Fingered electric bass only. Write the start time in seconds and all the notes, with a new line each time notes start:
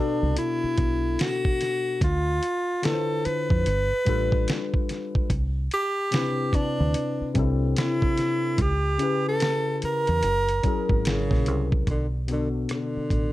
0.23 C2
0.64 muted fingered electric bass stroke
0.79 B1
2.02 D2
3.26 muted fingered electric bass stroke
3.51 F2
3.67 G1
4.07 A1
5.31 C2
6.54 muted fingered electric bass stroke
6.80 D2
7.21 muted fingered electric bass stroke
7.36 C2
8.59 C#2
9.83 muted fingered electric bass stroke
10.09 E2
10.24 F#1
10.65 muted fingered electric bass stroke
10.90 G#1
11.32 A#1
11.48 C2
11.88 B1
12.97 muted fingered electric bass stroke
13.11 A1